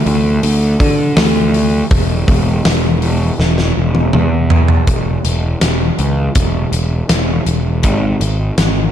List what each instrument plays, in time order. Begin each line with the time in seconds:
0.06 picked electric bass D2, open hi-hat
0.43 picked electric bass D2, open hi-hat
0.80 picked electric bass D3, kick, open hi-hat
1.17 picked electric bass D2, snare, open hi-hat
1.54 open hi-hat
1.91 picked electric bass E1, kick, open hi-hat
2.28 picked electric bass E1, kick, open hi-hat
2.65 picked electric bass E1, snare, open hi-hat
3.02 open hi-hat
3.39 picked electric bass E1, snare
3.58 snare
3.77 picked electric bass E1
3.95 high tom
4.13 picked electric bass E2, mid tom
4.50 floor tom
4.68 floor tom
4.87 picked electric bass E1, kick, closed hi-hat
5.25 picked electric bass E1, closed hi-hat
5.61 picked electric bass E1, snare, closed hi-hat
5.99 picked electric bass C#2, closed hi-hat
6.35 picked electric bass E1, kick, closed hi-hat
6.72 picked electric bass E1, closed hi-hat
7.09 picked electric bass E1, snare, closed hi-hat
7.46 picked electric bass E1, closed hi-hat
7.83 picked electric bass G#1, kick, closed hi-hat
8.21 picked electric bass G#1, closed hi-hat
8.58 picked electric bass G#1, snare, closed hi-hat